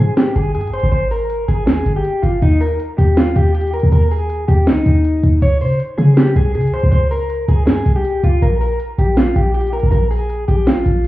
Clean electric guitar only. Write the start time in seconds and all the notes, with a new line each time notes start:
0.00 G#4
0.18 G4
0.36 G#4
0.55 G#4
0.73 C5
0.92 C5
1.11 A#4
1.48 G#4
1.67 G#4
1.96 G4
2.22 F4
2.42 D#4
2.61 A#4
2.98 G4
3.17 F4
3.36 G4
3.55 G4
3.74 A#4
3.93 A#4
4.11 G#4
4.48 G4
4.67 D#4
5.42 C#5
5.61 C5
5.98 G#4
6.17 G4
6.36 G#4
6.55 G#4
6.74 C5
6.92 C5
7.11 A#4
7.49 G#4
7.66 G#4
7.96 G4
8.24 F4
8.42 A#4
8.61 A#4
8.99 G4
9.17 F4
9.36 G4
9.54 G4
9.73 A#4
9.91 A#4
10.11 G#4
10.48 G4
10.67 F4